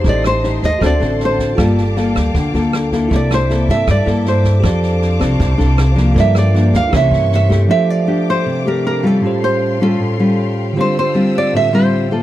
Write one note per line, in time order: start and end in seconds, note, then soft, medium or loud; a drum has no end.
0.00 0.39 D#4 medium
0.00 0.40 G4 medium
0.00 0.78 G4 soft
0.00 0.40 C5 medium
0.00 1.55 C6 medium
0.04 0.58 A1 medium
0.04 0.79 A3 medium
0.04 0.80 C5 soft
0.04 0.81 D#5 medium
0.04 0.80 G5 medium
0.04 3.08 A5 medium
0.04 kick medium
0.04 snare soft
0.09 0.25 D5 medium
0.24 0.61 C5 medium
0.24 cross-stick medium
0.24 snare soft
0.43 0.69 D#4 medium
0.43 0.69 G4 medium
0.43 0.69 C5 medium
0.43 snare soft
0.62 0.80 D#2 medium
0.62 0.82 D#5 loud
0.62 kick soft
0.62 snare soft
0.79 0.99 D2 medium
0.79 1.55 D3 medium
0.79 0.92 C4 medium
0.79 1.55 F#4 soft
0.79 0.93 F#4 medium
0.79 1.55 A4 soft
0.79 0.93 A4 medium
0.79 1.56 C5 soft
0.79 1.57 D5 medium
0.79 1.57 F#5 medium
0.79 kick medium
0.79 cross-stick medium
0.79 snare soft
0.84 1.19 D5 medium
0.84 1.57 E5 medium
1.00 1.53 A1 medium
1.00 1.54 C4 medium
1.00 1.55 F#4 medium
1.00 1.55 A4 medium
1.00 snare soft
1.20 snare soft
1.25 1.58 C5 medium
1.39 kick soft
1.39 snare soft
1.55 2.11 G1 medium
1.55 2.32 G3 medium
1.55 1.82 A#3 medium
1.55 3.06 F4 soft
1.55 1.82 F4 medium
1.55 3.07 A4 soft
1.55 1.82 A4 medium
1.55 3.09 F5 medium
1.55 3.08 G5 medium
1.55 3.08 D6 medium
1.55 kick medium
1.55 cross-stick medium
1.55 snare soft
1.61 3.09 D5 medium
1.77 snare soft
1.96 2.50 A#3 medium
1.96 2.50 F4 medium
1.96 2.51 A4 medium
1.96 snare soft
2.15 2.33 D2 medium
2.15 kick soft
2.15 cross-stick medium
2.15 snare soft
2.34 2.52 D2 medium
2.34 3.09 D3 medium
2.34 kick medium
2.34 snare soft
2.54 3.07 D2 medium
2.54 2.89 A#3 medium
2.54 2.89 F4 medium
2.54 2.89 A4 medium
2.54 snare soft
2.73 cross-stick medium
2.73 snare soft
2.92 3.46 A#3 medium
2.92 3.46 E4 medium
2.92 3.46 A4 medium
2.92 kick soft
2.92 snare soft
3.08 3.64 C2 medium
3.08 3.86 C3 medium
3.08 4.03 E4 medium
3.08 4.04 A4 soft
3.08 4.62 E5 medium
3.08 4.61 A5 medium
3.08 6.89 D6 medium
3.08 kick medium
3.08 snare soft
3.14 4.06 D5 medium
3.14 3.32 D5 medium
3.31 3.67 C5 medium
3.31 cross-stick medium
3.31 snare soft
3.49 3.87 A#3 medium
3.49 3.87 E4 medium
3.49 3.87 A4 medium
3.49 snare soft
3.68 3.86 G2 medium
3.68 3.88 E5 loud
3.68 kick soft
3.68 snare soft
3.87 4.05 G2 medium
3.87 4.62 G2 medium
3.87 4.25 D5 medium
3.87 kick medium
3.87 cross-stick medium
3.87 snare soft
4.05 4.60 G2 medium
4.05 4.61 A#3 medium
4.05 4.63 E4 soft
4.05 4.61 E4 medium
4.05 4.61 A4 soft
4.05 4.61 A4 medium
4.05 4.65 D5 soft
4.05 snare soft
4.25 4.62 C5 medium
4.25 snare soft
4.44 kick soft
4.44 snare soft
4.60 6.12 G4 medium
4.60 6.13 A4 soft
4.60 6.14 C5 medium
4.60 6.90 F5 medium
4.60 6.14 A5 medium
4.60 kick medium
4.60 cross-stick medium
4.60 snare soft
4.64 5.17 F2 medium
4.64 5.38 F3 medium
4.64 5.18 C4 medium
4.64 5.18 D4 medium
4.64 5.19 A4 medium
4.64 6.14 C5 soft
4.64 6.15 D5 medium
4.83 snare soft
5.02 snare soft
5.20 5.39 C2 medium
5.20 5.55 C4 medium
5.20 5.56 D4 medium
5.20 5.56 A4 medium
5.20 kick soft
5.20 cross-stick medium
5.20 snare soft
5.39 5.58 C2 loud
5.39 6.14 C3 medium
5.39 kick medium
5.39 snare soft
5.57 6.13 C2 medium
5.57 5.93 C4 medium
5.57 5.94 D4 medium
5.57 5.94 A4 medium
5.57 snare soft
5.78 cross-stick medium
5.78 snare soft
5.95 6.51 F3 medium
5.95 6.51 A#3 medium
5.95 6.51 D4 medium
5.95 kick soft
5.95 snare soft
6.12 6.90 G2 medium
6.12 6.89 F4 medium
6.12 6.90 A4 medium
6.12 6.91 A#4 soft
6.12 kick medium
6.16 6.70 G2 medium
6.16 7.68 A#3 medium
6.16 6.92 D5 medium
6.16 6.37 E5 medium
6.16 6.92 G5 medium
6.16 snare soft
6.35 6.73 D5 medium
6.35 cross-stick medium
6.35 snare soft
6.54 6.79 F3 medium
6.54 6.79 A#3 medium
6.54 6.79 D4 medium
6.54 snare soft
6.73 6.92 D2 medium
6.73 6.94 F5 loud
6.73 kick soft
6.73 snare soft
6.89 7.10 C2 medium
6.89 7.67 C3 medium
6.89 7.47 E3 medium
6.89 7.47 A#3 medium
6.89 7.66 E4 medium
6.89 7.67 G4 soft
6.89 7.68 A#4 soft
6.89 7.68 E5 medium
6.89 7.68 C6 medium
6.89 7.68 C#6 medium
6.89 kick medium
6.89 cross-stick medium
6.89 snare soft
6.93 7.47 C#4 medium
6.93 7.69 C#5 medium
6.93 7.30 E5 medium
7.11 7.65 G2 medium
7.11 snare soft
7.32 7.60 E5 medium
7.32 snare soft
7.49 8.06 A3 medium
7.49 8.06 D4 medium
7.49 8.06 G4 medium
7.49 kick soft
7.49 snare soft
7.68 9.19 F3 soft
7.68 8.44 F3 medium
7.68 9.19 D4 soft
7.68 9.20 G4 soft
7.68 10.73 A4 medium
7.68 7.90 E5 loud
7.68 12.23 F5 medium
7.68 9.21 G5 medium
7.68 9.21 D6 medium
7.72 9.21 A4 soft
7.72 9.22 C5 medium
7.90 8.29 D5 loud
8.07 8.62 A3 medium
8.07 8.62 D4 medium
8.07 8.62 G4 medium
8.30 8.68 C5 loud
8.46 9.21 C3 medium
8.66 9.01 A3 medium
8.66 9.01 D4 medium
8.66 9.01 G4 medium
8.66 8.85 A#4 medium
8.87 9.06 A#4 medium
9.03 9.77 G3 medium
9.03 9.77 C#4 medium
9.03 9.77 F4 medium
9.03 9.44 A4 medium
9.21 10.72 A2 soft
9.21 9.97 A2 medium
9.21 10.73 C#4 soft
9.21 10.74 F4 soft
9.21 12.23 G5 medium
9.21 10.74 C6 medium
9.26 10.74 G4 soft
9.26 10.75 C5 medium
9.44 9.79 C5 medium
9.81 10.16 G3 medium
9.81 10.16 C#4 medium
9.81 10.16 F4 medium
9.81 10.54 A4 medium
9.99 10.74 A2 medium
10.20 10.73 G3 medium
10.20 10.74 C#4 medium
10.20 10.74 F4 medium
10.73 12.23 D3 medium
10.73 11.51 D3 medium
10.73 12.23 D4 medium
10.73 12.23 F4 soft
10.73 12.23 C5 medium
10.73 12.23 E6 medium
10.77 11.01 G3 medium
10.77 11.01 C4 medium
10.77 11.01 F4 medium
10.77 12.23 G4 soft
10.77 12.23 C5 medium
10.77 10.96 C5 medium
10.99 11.36 C5 medium
11.14 11.69 G3 medium
11.14 11.69 C4 medium
11.14 11.69 F4 medium
11.38 11.54 D5 medium
11.53 12.23 A2 medium
11.53 11.74 E5 loud
11.73 12.07 G3 medium
11.73 12.08 C4 medium
11.73 12.08 F4 medium
11.73 12.23 C5 medium
12.11 12.23 A#3 medium
12.11 12.23 F4 medium
12.11 12.23 A4 medium